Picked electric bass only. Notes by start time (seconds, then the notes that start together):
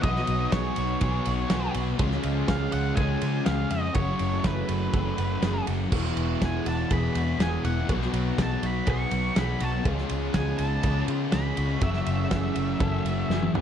0.04 B1
0.28 B1
0.52 B1
0.78 B1
1.01 B1
1.27 B1
1.51 B1
1.76 B1
1.99 C#2
2.25 C#2
2.48 C#2
2.74 C#2
2.97 C#2
3.22 C#3
3.47 C#2
3.71 F2
3.96 F#1
4.21 F#1
4.44 F#1
4.70 F#1
4.94 F#1
5.19 F#1
5.43 F#1
5.68 F#1
5.93 E1
6.17 E1
6.42 E1
6.67 E1
6.91 E1
7.16 E2
7.39 E1
7.65 E1
7.89 B1
8.14 B1
8.39 B1
8.63 B1
8.87 B1
9.12 B1
9.37 B1
9.61 B1
9.86 C#2
10.11 C#2
10.35 C#2
10.60 C#2
10.84 C#2
11.08 C#3
11.33 C#2
11.58 C#2
11.82 F#1
12.07 F#1
12.31 F#1
12.57 F#1
12.80 F#1
13.05 F#1
13.30 F#1
13.54 D#2